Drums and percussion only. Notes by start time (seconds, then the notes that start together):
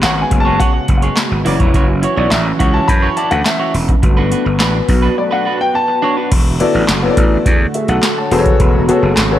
0.03 snare, clap, closed hi-hat
0.31 kick, closed hi-hat
0.60 kick, closed hi-hat
0.88 kick, closed hi-hat
1.02 closed hi-hat
1.17 snare, clap, closed hi-hat
1.46 open hi-hat
1.60 kick, closed hi-hat
1.74 kick, closed hi-hat
2.03 closed hi-hat
2.32 snare, clap, closed hi-hat
2.60 kick, closed hi-hat
2.89 kick, closed hi-hat
3.17 closed hi-hat
3.31 closed hi-hat
3.46 snare, clap, closed hi-hat
3.74 open hi-hat
3.89 kick, closed hi-hat
4.03 kick, closed hi-hat
4.32 closed hi-hat
4.60 snare, clap, closed hi-hat
4.89 kick, open hi-hat
6.32 kick, closed hi-hat, crash
6.60 closed hi-hat
6.89 snare, clap, closed hi-hat
7.17 kick, closed hi-hat
7.46 kick, closed hi-hat
7.74 closed hi-hat
7.88 closed hi-hat
8.03 snare, clap, closed hi-hat
8.32 open hi-hat
8.46 kick, closed hi-hat
8.60 kick, closed hi-hat
8.89 closed hi-hat
9.17 snare, clap, closed hi-hat